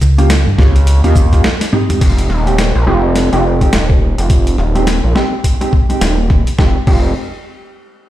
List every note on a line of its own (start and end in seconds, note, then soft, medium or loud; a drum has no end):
0.01 0.44 C#2 medium
0.01 snare soft
0.01 shaker medium
0.18 0.30 A#3 medium
0.18 0.30 C#4 medium
0.18 0.30 F4 medium
0.18 0.30 G4 loud
0.18 closed hi-hat soft
0.30 snare loud
0.30 closed hi-hat medium
0.47 0.57 G2 loud
0.58 1.01 C#2 loud
0.58 0.75 A#3 medium
0.58 0.75 C#4 medium
0.58 0.75 F4 medium
0.58 0.75 G4 loud
0.58 kick loud
0.58 snare medium
0.76 closed hi-hat soft
0.87 closed hi-hat medium
1.04 1.42 D#2 loud
1.04 1.13 A#3 medium
1.04 1.13 C#4 medium
1.04 1.13 F4 medium
1.04 1.13 G4 medium
1.04 closed hi-hat soft
1.15 1.29 A#3 medium
1.15 1.29 C#4 medium
1.15 1.29 F4 medium
1.15 1.29 G4 medium
1.15 kick loud
1.15 shaker medium
1.32 1.44 A#3 medium
1.32 1.44 C#4 medium
1.32 1.44 F4 medium
1.32 1.44 G4 medium
1.32 kick medium
1.32 snare soft
1.32 closed hi-hat soft
1.44 snare loud
1.61 snare medium
1.61 closed hi-hat medium
1.73 2.30 G#3 loud
1.73 2.30 C4 medium
1.73 2.30 D#4 medium
1.73 2.30 G4 loud
1.73 mid tom medium
1.90 closed hi-hat medium
1.90 mid tom medium
2.01 2.28 F1 loud
2.01 kick loud
2.01 closed hi-hat medium
2.01 crash medium
2.18 closed hi-hat medium
2.30 2.73 D#1 loud
2.30 snare soft
2.47 2.58 G#3 medium
2.47 2.58 C4 medium
2.47 2.58 D#4 medium
2.47 2.58 G4 medium
2.47 closed hi-hat soft
2.58 snare loud
2.58 closed hi-hat medium
2.75 2.85 A#1 medium
2.87 3.30 F1 loud
2.87 3.04 G#3 medium
2.87 3.03 C4 medium
2.87 3.03 D#4 medium
2.87 3.04 G4 medium
3.16 snare medium
3.16 closed hi-hat medium
3.32 3.71 F1 medium
3.32 3.44 G#3 medium
3.32 3.44 C4 medium
3.32 3.44 D#4 medium
3.32 3.44 G4 medium
3.32 closed hi-hat soft
3.61 3.72 G#3 medium
3.61 3.72 C4 medium
3.61 3.72 D#4 medium
3.61 3.72 G4 medium
3.61 kick medium
3.61 closed hi-hat soft
3.73 4.16 D#1 medium
3.73 snare loud
3.73 closed hi-hat medium
3.90 kick loud
4.18 4.57 F1 medium
4.18 closed hi-hat medium
4.30 kick loud
4.30 closed hi-hat medium
4.47 closed hi-hat medium
4.58 5.01 D#1 loud
4.58 snare soft
4.75 4.87 G#3 medium
4.75 4.87 C4 medium
4.75 4.87 D#4 medium
4.75 4.87 G4 medium
4.75 closed hi-hat soft
4.87 snare loud
4.87 closed hi-hat medium
5.04 5.14 A#1 medium
5.15 5.32 G#3 medium
5.15 5.32 C4 medium
5.15 5.32 D#4 medium
5.15 5.32 G4 medium
5.15 snare medium
5.44 kick medium
5.44 closed hi-hat medium
5.61 5.72 G#3 medium
5.61 5.72 C4 medium
5.61 5.72 D#4 medium
5.61 5.72 G4 medium
5.61 closed hi-hat soft
5.73 kick loud
5.89 6.01 G#3 medium
5.89 6.01 C4 medium
5.89 6.01 D#4 medium
5.89 6.01 G4 medium
5.89 closed hi-hat soft
6.01 6.44 D#1 loud
6.01 snare loud
6.01 closed hi-hat medium
6.30 kick loud
6.30 snare soft
6.47 closed hi-hat medium
6.58 6.77 F1 loud
6.58 6.77 G#3 medium
6.58 6.77 C4 medium
6.58 6.77 D#4 medium
6.58 6.77 G4 medium
6.58 kick loud
6.58 snare medium
6.87 7.14 F1 loud
6.87 7.10 G#3 medium
6.87 7.09 C4 medium
6.87 7.09 D#4 medium
6.87 7.09 G4 medium
6.87 kick loud
6.87 crash medium